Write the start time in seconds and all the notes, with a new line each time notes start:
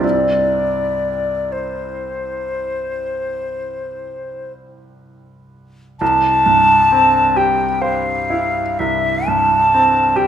Already playing: C2
0.00 G3 C4 E4 D5
1.52 C5
6.00 C2 A5
6.46 G2
6.92 C4
7.36 G4 G5
7.82 C5 F5
8.30 E4
8.79 C2 E5
9.27 G2 A5
9.74 C4
10.16 G4 G5